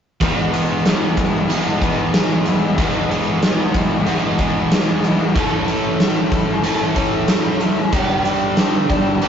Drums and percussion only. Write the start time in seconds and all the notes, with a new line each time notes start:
0.21 kick, closed hi-hat
0.54 closed hi-hat
0.86 snare, closed hi-hat
1.17 kick, closed hi-hat
1.50 closed hi-hat
1.82 kick, closed hi-hat
2.14 snare, closed hi-hat
2.46 closed hi-hat
2.78 kick, closed hi-hat
3.11 closed hi-hat
3.43 snare, closed hi-hat
3.74 kick, closed hi-hat
4.06 closed hi-hat
4.39 kick, closed hi-hat
4.72 snare, closed hi-hat
5.04 closed hi-hat
5.36 kick, closed hi-hat
5.68 closed hi-hat
6.00 snare, closed hi-hat
6.32 kick, closed hi-hat
6.64 closed hi-hat
6.96 kick, closed hi-hat
7.28 snare, closed hi-hat
7.60 closed hi-hat
7.93 kick, closed hi-hat
8.25 closed hi-hat
8.57 snare, closed hi-hat
8.90 kick, closed hi-hat
9.22 closed hi-hat